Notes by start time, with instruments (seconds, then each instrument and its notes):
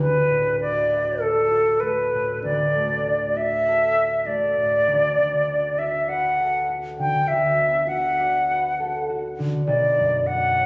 Already playing: harp E4 B4 E5, flute B4
0.00 harp D2
0.30 harp A2
0.61 harp F#4, flute D5
0.92 harp E5
1.21 flute A4, harp A4
1.51 harp F#4
1.80 harp A3, flute B4
2.14 harp A2
2.44 harp D2, flute D5
2.75 harp A3
3.07 harp F#4
3.37 harp E5, flute E5
3.68 harp A4
3.97 harp F#4
4.26 harp A3, flute D5
4.56 harp A2
4.87 harp D2
5.18 harp D3
5.49 harp F#4
5.79 harp D5, flute E5
6.09 harp B4, flute F#5
6.40 harp A4
6.69 harp F#4
6.99 harp D3, flute G5
7.28 harp D2, flute E5
7.60 harp B3
7.88 harp F#4, flute F#5
8.20 harp D5
8.51 harp B4
8.80 harp A4
9.10 harp F#4
9.39 harp D3
9.66 harp B1, flute D5
9.98 harp F#2
10.27 harp F#4, flute F#5
10.56 harp C#5